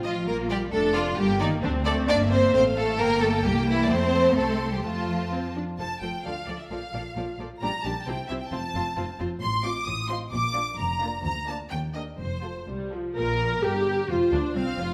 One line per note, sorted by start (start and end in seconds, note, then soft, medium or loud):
0.00 0.19 A1 medium
0.00 0.71 F4 medium
0.00 0.15 D#5 medium
0.04 0.27 F3 medium
0.04 0.27 F4 medium
0.27 0.65 A#1 medium
0.27 0.50 A#3 medium
0.27 0.35 A#4 loud
0.49 0.72 G3 medium
0.49 0.58 G4 medium
0.49 0.60 D5 medium
0.72 1.10 F1 medium
0.72 0.95 A3 medium
0.72 1.17 D4 medium
0.72 0.95 A4 loud
0.95 1.03 F3 medium
0.95 1.18 F4 medium
0.95 1.05 D5 medium
1.17 1.55 G1 medium
1.17 1.40 G3 medium
1.17 1.62 A#3 medium
1.17 1.40 G4 loud
1.40 1.48 D#3 medium
1.40 1.49 D#4 medium
1.40 1.51 D5 medium
1.62 2.01 D2 medium
1.62 1.70 D3 medium
1.62 2.08 C4 medium
1.62 1.71 D4 medium
1.85 2.07 A3 medium
1.85 1.94 A4 loud
1.85 1.96 D5 medium
2.07 2.50 G1 medium
2.07 2.54 A#3 medium
2.07 2.15 D4 loud
2.07 2.17 D5 loud
2.07 2.50 E5 medium
2.30 2.52 C4 medium
2.30 2.53 C5 loud
2.53 2.97 A1 medium
2.53 2.98 A3 medium
2.53 2.61 C4 loud
2.53 2.62 C5 loud
2.53 2.98 F5 medium
2.75 2.98 A3 medium
2.75 2.98 A4 loud
2.97 3.44 G1 medium
2.97 3.21 A#3 medium
2.97 3.88 A#3 medium
2.97 3.21 A#4 loud
2.97 3.87 G5 medium
3.21 3.29 A3 medium
3.21 3.44 A4 loud
3.44 3.89 C2 medium
3.44 3.52 G3 medium
3.44 3.67 G4 loud
3.67 3.89 E3 medium
3.67 3.83 E4 loud
3.84 3.90 D5 medium
3.89 4.36 F2 medium
3.89 4.36 A3 medium
3.89 4.36 C4 medium
3.89 4.37 C5 loud
3.89 4.36 A5 medium
4.35 4.82 C2 medium
4.35 4.71 A3 medium
4.35 4.83 C4 medium
4.35 4.71 A4 medium
4.35 4.83 C6 medium
4.71 4.83 G3 medium
4.71 4.84 G4 medium
4.83 5.59 F2 medium
4.83 5.54 F3 medium
4.83 5.26 A3 medium
4.83 5.56 F4 medium
4.83 5.57 A5 medium
5.31 5.39 C4 medium
5.55 5.63 D4 medium
5.79 5.87 F1 medium
5.79 5.87 F2 soft
5.79 5.87 F3 soft
5.79 5.87 F4 soft
5.79 5.87 A4 soft
5.79 5.87 C5 soft
5.79 6.00 A5 medium
6.02 6.10 F1 medium
6.02 6.10 F2 soft
6.02 6.10 F3 soft
6.02 6.10 F4 soft
6.02 6.10 A4 soft
6.02 6.10 C5 soft
6.02 6.24 G5 medium
6.24 6.33 D2 soft
6.24 6.34 F3 soft
6.24 6.34 F4 soft
6.24 6.33 A4 soft
6.24 6.33 D5 soft
6.24 6.47 F5 medium
6.47 6.55 D2 soft
6.47 6.57 F3 soft
6.47 6.57 F4 soft
6.47 6.56 A4 soft
6.47 6.59 D5 medium
6.47 6.56 D5 soft
6.59 6.70 E5 medium
6.69 6.78 A#1 medium
6.69 6.78 A#2 soft
6.69 6.80 F3 soft
6.69 6.80 F4 soft
6.69 6.78 A4 soft
6.69 6.79 D5 soft
6.69 7.37 F5 medium
6.93 7.01 A#1 medium
6.93 7.01 A#2 soft
6.93 7.02 F3 soft
6.93 7.02 F4 soft
6.93 7.02 A4 soft
6.93 7.02 D5 soft
7.16 7.24 A#1 soft
7.16 7.24 A#2 soft
7.16 7.25 F3 soft
7.16 7.25 F4 soft
7.16 7.25 A4 soft
7.16 7.24 D5 soft
7.38 7.46 A#1 soft
7.38 7.47 A#2 soft
7.38 7.48 F3 soft
7.38 7.48 F4 soft
7.38 7.48 A4 soft
7.38 7.48 D5 soft
7.61 7.69 A#1 medium
7.61 7.70 A#2 medium
7.61 7.71 G3 medium
7.61 7.70 D4 soft
7.61 7.70 G4 soft
7.61 7.70 D5 medium
7.61 7.83 A#5 medium
7.84 7.92 A#1 medium
7.84 7.92 A#2 medium
7.84 7.93 G3 soft
7.84 7.94 D4 soft
7.84 7.93 G4 soft
7.84 7.93 D5 soft
7.84 8.07 A5 medium
8.06 8.15 C2 medium
8.06 8.14 C3 medium
8.06 8.16 C4 medium
8.06 8.16 E4 soft
8.06 8.15 G4 soft
8.06 8.15 C5 soft
8.06 8.29 G5 medium
8.28 8.37 C2 soft
8.28 8.37 C3 medium
8.28 8.38 C4 soft
8.28 8.38 E4 soft
8.28 8.38 G4 medium
8.28 8.38 C5 soft
8.28 8.33 E5 medium
8.40 8.51 G5 medium
8.51 8.60 F1 medium
8.51 8.59 F2 medium
8.51 8.60 C4 medium
8.51 8.59 F4 soft
8.51 8.60 F4 soft
8.51 8.59 C5 medium
8.51 9.19 A5 medium
8.74 8.83 F1 medium
8.74 8.82 F2 medium
8.74 8.83 C4 soft
8.74 8.83 F4 medium
8.74 8.83 F4 soft
8.74 8.83 C5 medium
8.97 9.05 F1 medium
8.97 9.05 F2 medium
8.97 9.06 C4 medium
8.97 9.05 F4 medium
8.97 9.06 F4 medium
8.97 9.05 C5 soft
9.19 9.28 F1 medium
9.19 9.27 F2 medium
9.19 9.27 C4 medium
9.19 9.27 F4 medium
9.19 9.28 F4 soft
9.19 9.28 C5 soft
9.41 9.78 A1 medium
9.41 9.78 A2 medium
9.41 9.63 C6 loud
9.64 9.82 C4 medium
9.64 9.81 F4 medium
9.64 9.82 F4 medium
9.64 9.82 D#5 medium
9.64 9.87 D6 medium
9.86 10.23 A1 medium
9.86 10.23 A2 medium
9.86 10.09 D#6 medium
10.08 10.27 C4 medium
10.08 10.27 F4 medium
10.08 10.27 D#5 medium
10.08 10.16 C6 medium
10.31 10.69 A#1 medium
10.31 10.69 A#2 medium
10.31 10.77 D6 medium
10.55 10.73 A#3 medium
10.55 10.73 D4 medium
10.55 10.73 F4 medium
10.55 10.73 D5 medium
10.78 11.15 F1 medium
10.78 11.15 F2 medium
10.78 11.22 A#5 medium
11.02 11.19 A#3 medium
11.02 11.19 D4 medium
11.02 11.19 F4 medium
11.02 11.19 D5 medium
11.24 11.62 D2 medium
11.24 11.47 A#5 medium
11.48 11.66 A#3 medium
11.48 11.66 D4 medium
11.48 11.66 F4 medium
11.48 11.65 D5 medium
11.48 11.56 A5 medium
11.71 12.09 D#2 medium
11.71 11.79 G5 medium
11.95 12.14 A#3 medium
11.95 12.14 D4 medium
11.95 12.14 G4 soft
11.95 12.14 A#4 soft
11.95 12.03 D#5 medium
12.18 12.58 F1 medium
12.18 12.58 F2 medium
12.18 12.66 C5 medium
12.43 12.62 F3 soft
12.43 12.62 F4 medium
12.43 12.62 F4 soft
12.43 12.62 A4 soft
12.67 13.06 C2 medium
12.67 12.91 G3 medium
12.93 13.17 F3 soft
12.93 13.11 F4 soft
12.93 13.11 A4 medium
13.16 13.60 A#1 medium
13.16 13.60 A#2 medium
13.16 13.60 A#4 medium
13.63 14.09 G1 medium
13.63 14.08 G2 medium
13.63 14.09 G4 medium
13.63 14.06 A#4 medium
14.08 14.18 F1 medium
14.08 14.16 F2 medium
14.08 14.17 F4 medium
14.08 14.33 F4 medium
14.08 14.54 C5 medium
14.31 14.39 D2 medium
14.31 14.40 D2 medium
14.31 14.40 D4 medium
14.31 14.56 D4 medium
14.54 14.62 C2 medium
14.54 14.63 C2 medium
14.54 14.77 C4 medium
14.54 14.79 C4 medium
14.54 14.94 F5 medium
14.77 14.94 F1 medium
14.77 14.94 F2 medium
14.77 14.94 F4 medium